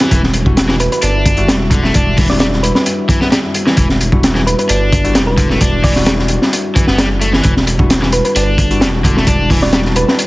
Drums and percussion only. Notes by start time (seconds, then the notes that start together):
0.00 snare, closed hi-hat
0.11 kick, closed hi-hat
0.24 snare
0.34 closed hi-hat
0.46 kick
0.57 snare, closed hi-hat
0.68 snare
0.80 closed hi-hat
0.92 closed hi-hat
1.02 closed hi-hat
1.26 kick, closed hi-hat
1.37 closed hi-hat
1.48 snare, closed hi-hat
1.71 kick, closed hi-hat
1.84 snare
1.94 kick, closed hi-hat
2.17 kick, open hi-hat
2.30 snare
2.40 snare, closed hi-hat
2.53 snare
2.64 closed hi-hat
2.75 snare
2.86 closed hi-hat
3.09 kick, closed hi-hat
3.21 snare
3.32 snare, closed hi-hat
3.54 closed hi-hat
3.67 snare
3.77 kick, closed hi-hat
3.89 snare
4.01 closed hi-hat
4.12 kick
4.23 snare, closed hi-hat
4.35 snare
4.47 closed hi-hat
4.59 closed hi-hat
4.69 closed hi-hat
4.93 kick, closed hi-hat
5.05 closed hi-hat
5.15 snare, closed hi-hat
5.38 kick, closed hi-hat
5.50 snare
5.61 kick, closed hi-hat
5.84 kick, open hi-hat
5.96 snare
6.06 snare, closed hi-hat
6.19 snare
6.28 closed hi-hat
6.42 snare
6.53 closed hi-hat
6.76 kick, closed hi-hat
6.87 snare
6.98 snare, closed hi-hat
7.21 closed hi-hat
7.33 snare
7.44 kick, closed hi-hat
7.57 snare
7.67 closed hi-hat
7.79 kick
7.90 snare, closed hi-hat
8.02 snare
8.12 closed hi-hat
8.25 closed hi-hat
8.36 closed hi-hat
8.58 kick, closed hi-hat
8.71 closed hi-hat
8.81 snare, closed hi-hat
9.04 kick, closed hi-hat
9.17 snare
9.27 kick, closed hi-hat
9.50 kick, open hi-hat
9.62 snare
9.73 snare, closed hi-hat
9.85 snare
9.96 closed hi-hat
10.08 snare
10.19 closed hi-hat